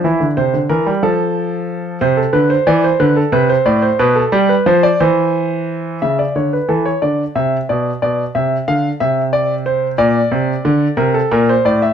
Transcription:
<<
  \new Staff \with { instrumentName = "Grand piano" } { \time 6/8 \key a \phrygian \tempo 4. = 60 e'8 c''8 bes'8 a'4. | c''16 a'16 b'16 c''16 d''16 c''16 b'16 a'16 b'16 c''16 d''16 c''16 | b'16 a'16 g'16 b'16 c''16 d''16 c''4. | e''16 d''16 cis''16 b'16 a'16 cis''16 d''8 e''8 d''8 |
d''8 e''8 f''8 e''8 d''8 c''8 | d''4. bes'16 a'16 bes'16 c''16 d''16 e''16 | }
  \new Staff \with { instrumentName = "Grand piano" } { \clef bass \time 6/8 \key a \phrygian e16 d16 c16 d16 e16 g16 f4. | c8 d8 e8 d8 c8 a,8 | b,8 g8 f8 e4. | cis8 d8 e8 d8 c8 b,8 |
b,8 c8 d8 c4. | bes,8 c8 d8 c8 bes,8 a,8 | }
>>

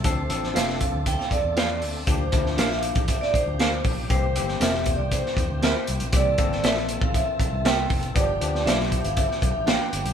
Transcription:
<<
  \new Staff \with { instrumentName = "Vibraphone" } { \time 4/4 \key c \mixolydian \tempo 4 = 118 c''4 e''16 f''8. g''16 f''16 d''4 r8 | c''4 e''16 f''8. e''16 d''16 c''4 r8 | c''4 \tuplet 3/2 { e''4 d''8 } c''4. r8 | d''4 e''8. f''16 e''4 g''8. r16 |
d''4 e''8. f''16 e''4 g''8. r16 | }
  \new Staff \with { instrumentName = "Clean electric guitar" } { \time 4/4 \key c \mixolydian r4 <f' a' c'' f''>8 r4. <f' a' c'' f''>8 r8 | r4 <d' g' bes' f''>8 r4. <d' g' bes' f''>8 r8 | r4 <c' g' bes' e''>8 r4. <c' g' bes' e''>8 r8 | r4 <c' g' bes' e''>8 r4. <c' g' bes' e''>8 r8 |
r4 <d' g' b' f''>8 r4. <d' g' b' f''>8 r8 | }
  \new Staff \with { instrumentName = "Tine electric piano" } { \time 4/4 \key c \mixolydian <f c' d' a'>8 <f c' d' a'>4. r2 | <f bes d' g'>8 <f bes d' e'>4. r2 | <e bes c' g'>8 <ees e bes c' g'>4. r2 | <e bes c' g'>8 <e bes c' a'>4. r2 |
<f b d' g'>8 <f a b d' g'>4. r2 | }
  \new Staff \with { instrumentName = "Tonewheel organ" } { \time 4/4 \key c \mixolydian << { a'1 | g'1~ | g'1 | a'1 |
g'1 | } \\ { d'1~ | d'1 | c'1~ | c'1 |
d'1 | } >> }
  \new Staff \with { instrumentName = "Tonewheel organ" } { \time 4/4 \key c \mixolydian << { c'1 | bes1~ | bes1~ | bes1 |
b1 | } \\ { a1 | f1 | e1~ | e1 |
f1 | } >> }
  \new Staff \with { instrumentName = "Fingered electric bass" } { \clef bass \time 4/4 \key c \mixolydian d,8 a,,8 f,,8. d,8 r16 f,16 e,8. d,8 | d,8 d,8 bes,,8. a,,8 r16 bes,,16 d,8. bes,,8 | c,8 g,,8 e,,8. c,8 r16 e,16 d,8 r16 c,16 bes,,16 | c,8 g,,8 bes,,8. a,,8 r16 bes,,16 c,8. f,,8 |
g,,8 d,8 b,,8. g,,8 r16 b,,16 a,,8 r16 g,,16 b,,16 | }
  \new DrumStaff \with { instrumentName = "Drums" } \drummode { \time 4/4 <hh bd>8 hh16 sn16 <hh sn>16 sn16 <hh bd>8 <hh bd>16 sn16 <hh bd>8 <hh sn>8 hho8 | <hh bd>8 <hh bd>16 sn16 <hh sn>16 sn16 hh16 <hh bd>16 <hh bd>16 sn16 <hh bd>8 <hh sn>8 <hho bd>8 | <hh bd>8 hh16 sn16 <hh sn>16 sn16 <hh bd>8 <hh bd>16 sn16 <hh bd>8 <hh sn>8 hh16 hh16 | <hh bd>8 <hh bd>16 sn16 <hh sn>16 sn16 hh16 bd16 <hh bd>8 <hh bd>8 <hh sn>8 <hho bd>16 hh16 |
<hh bd>8 hh16 sn16 <hh sn>16 sn16 <hh bd>16 hh16 <hh bd>16 sn16 <hh bd>8 <hh sn>8 hh16 hh16 | }
>>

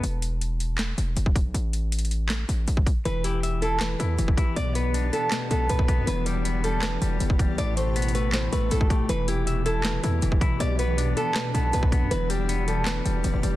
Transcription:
<<
  \new Staff \with { instrumentName = "Nylon-string guitar" } { \time 4/4 \key e \minor \tempo 4 = 159 r1 | r1 | b'8 g'4 a'8 b'2 | d''8 b'4 a'8 b'8 a'8 b'4 |
b'8 g'4 a'8 b'2 | d''8 c''4 b'8 c''8 b'8 a'8 g'8 | b'8 g'4 a'8 b'2 | d''8 b'4 a'8 b'8 a'8 b'4 |
b'8 g'4 a'8 b'2 | }
  \new Staff \with { instrumentName = "Ambient pad" } { \clef bass \time 4/4 \key e \minor << { r1 | r1 | <e g'>1 | <fis d'>1 |
<e g'>1 | c1 | <e g'>1 | <fis d'>1 |
<e g'>1 | } \\ { r1 | r1 | b1~ | b1 |
b,1 | a1 | r1 | r1 |
r1 | } >> }
  \new Staff \with { instrumentName = "Clean electric guitar" } { \clef bass \time 4/4 \key e \minor r1 | r1 | e8 e'8 e''8 e'8 e8 e'8 e8 e'8 | b,8 b8 d'8 b8 b,8 b8 b,8 b8 |
e,8 g8 b8 g8 e,8 g8 e,8 g8 | a,8 a8 b8 a8 a,8 a8 a,8 a8 | e8 e'8 e''8 e'8 e8 e'8 e8 e'8 | b,8 b8 d'8 b8 b,8 b8 b,8 b8 |
e,8 g8 b8 g8 e,8 g8 e,8 g8 | }
  \new Staff \with { instrumentName = "808-style bass" } { \clef bass \time 4/4 \key e \minor e,,2~ e,,8 e,,8 e,,8. b,,16 | a,,2~ a,,8 a,,8 a,,8 r8 | e,,2~ e,,8 e,8 e,,8 r8 | b,,4. r4 b,,8 b,,8. fis,16 |
e,,2~ e,,8 e,,8 e,,8. b,,16 | a,,2~ a,,8 a,,8 a,,8 r8 | e,,2~ e,,8 e,8 e,,8 r8 | b,,4. r4 b,,8 b,,8. fis,16 |
e,,2~ e,,8 e,,8 e,,16 e,,16 e,,8 | }
  \new DrumStaff \with { instrumentName = "Drums" } \drummode { \time 4/4 hh8 hh8 hh8 hh8 <hc hh sn>8 hh8 hh16 bd16 <hh bd>8 | hh8 hh8 \tuplet 3/2 { hh16 hh16 hh16 hh16 r16 r16 } <hc hh sn>8 hh8 hh16 bd16 <hh bd>8 | hh8 hh8 hh8 hh8 <hc hh sn>8 hh8 hh16 bd16 <hh bd>8 | hh8 hh8 hh8 hh8 <hc hh sn>8 hh8 hh16 bd16 <hh bd>8 |
hh8 hh8 hh8 hh8 <hc hh sn>8 hh8 hh16 bd16 <hh bd>8 | hh8 hh8 \tuplet 3/2 { hh16 hh16 hh16 hh16 r16 r16 } <hc hh sn>8 hh8 hh16 bd16 <hh bd>8 | hh8 hh8 hh8 hh8 <hc hh sn>8 hh8 hh16 bd16 <hh bd>8 | hh8 hh8 hh8 hh8 <hc hh sn>8 hh8 hh16 bd16 <hh bd>8 |
hh8 hh8 hh8 hh8 <hc hh sn>8 hh8 hh8 hh8 | }
>>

